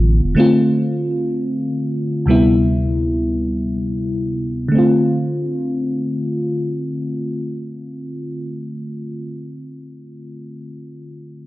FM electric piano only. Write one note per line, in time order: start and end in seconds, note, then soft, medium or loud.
0.00 0.10 F4 medium
0.35 2.23 D3 medium
0.35 2.24 A3 medium
0.35 2.25 C4 medium
0.40 2.25 F4 medium
2.26 4.41 D2 medium
2.26 4.42 C3 medium
2.26 4.42 G3 medium
2.26 4.43 B3 medium
2.31 4.43 E4 medium
4.68 9.10 D3 medium
4.68 9.13 A3 medium
4.75 9.17 C4 medium
4.75 9.20 F4 medium